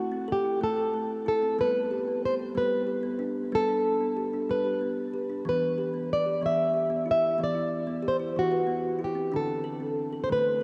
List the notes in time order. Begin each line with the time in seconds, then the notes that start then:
Already playing: A3 E4 F#4
0.12 C4
0.28 A4
0.32 G4
0.44 E4
0.61 A3 A4
0.77 A4
0.94 A3
1.26 E4 A4
1.43 C4
1.59 G3 B3 B4
1.91 G4
2.08 B3
2.26 C5
2.39 G4
2.55 G3 B3 B4
2.87 G4
3.03 B3
3.19 D4
3.52 G3 B3 A4
3.69 D4
4.00 B3
4.17 G4
4.33 D4
4.49 G3 B4
4.65 G4
4.81 B3
5.14 G4
5.30 D4
5.45 E3 B3 B4
5.78 G4
5.94 B3
6.13 D5
6.26 G4
6.41 E3 B3
6.46 E5
6.74 G4
6.90 B3
7.06 E4
7.11 E5
7.38 E3 B3
7.44 D5
7.55 E4
7.87 B3
8.03 G4
8.08 C5
8.20 E4
8.36 E3 F#4
8.52 B4
8.67 B3
8.99 E4
9.04 G4
9.15 C4
9.32 D3 D4
9.36 A4
9.64 A4
9.80 C4
10.13 A4
10.24 C5
10.29 D3 A3 B4